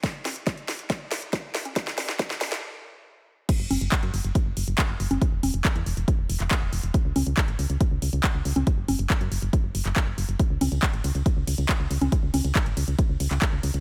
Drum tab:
CC |----------------|----------------|x---------------|----------------|
RD |----------------|----------------|----------------|----------------|
HH |x-oxxxoxx-oxx-ox|x-oxxxox--------|x-oxxxoxx-oxx-ox|x-oxxxoxx-oxx-ox|
CP |----------------|----------------|----x-------x---|----x------xx---|
SD |o-o-o-o-o-o-o-o-|oooooooo--------|----------------|----------------|
CG |--o------------o|--o---o---------|--o------------o|--o-------------|
BD |o---o---o---o---|o---o-----------|o---o---o---o---|o---o---o---o---|

CC |----------------|----------------|----------------|----------------|
RD |----------------|----------------|--x---x---x---x-|--x---x---x---x-|
HH |x-oxxxoxx-oxx-ox|x-oxxxoxx-oxx-ox|x-oxxxoxx-oxx-ox|x-oxxxoxx-oxx-ox|
CP |----x-------x---|----x------xx---|----x-------x---|----x------xx---|
SD |----------------|----------------|----------------|----------------|
CG |--o------------o|--o-------------|--o------------o|--o-------------|
BD |o---o---o---o---|o---o---o---o---|o---o---o---o---|o---o---o---o---|